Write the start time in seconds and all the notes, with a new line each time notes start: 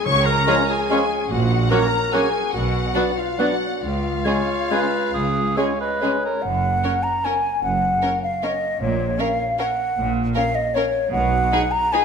0.06 C#2 C#3 C#5 C#6
0.26 A#4 A#5
0.47 F3 G#3 C#4 G#4 C#5 F6
0.69 G#4 G#5
0.90 F3 G#3 C#4 G#4 C#5 F6
1.30 A#1 A#2 F#4 F#5
1.70 F#3 A#3 C#4 F#4 A#4 C#5 A#5 F#6
2.12 F#3 A#3 C#4 F#4 G#4 C#5 G#5 F#6
2.52 B1 B2 F#4 F#5
2.95 F#3 B3 D4 F#4 D5 F#6
3.16 F4 F5
3.38 F#3 B3 D4 F#4 D5 F#5 F#6
3.81 C#2 F4 F5
4.24 C#3 G#3 C#4 G#4 C#5 G#6
4.70 C#3 G#3 C#4 G#4 B4 G#6
5.13 C#2 G#4
5.57 C#3 G#3 C#4 G#4 C#5 G#6
5.79 B4 D#5
6.01 C#3 G#3 C#4 G#4 C#5
6.25 A#4
6.42 F#1 F#2 F#5
6.84 C#4 A#4 C#5
7.03 A#5
7.25 C#4 A#4 C#5 G#5
7.62 F#1 F#2 F#5
8.02 C#4 A#4 C#5
8.23 F5
8.43 C#4 A#4 C#5 D#5
8.80 A#1 A#2 C#5
9.18 C#4 A#4 C#5 F5
9.59 C#4 A#4 C#5 F#5
9.97 A#1 A#2
10.35 C#4 A#4 C#5 F5
10.55 D#5
10.74 C#4 A#4 C#5
11.12 B1 B2 F#5
11.51 D#4 G#4 B4
11.71 A#5
11.92 D#4 G#4 B4 G#5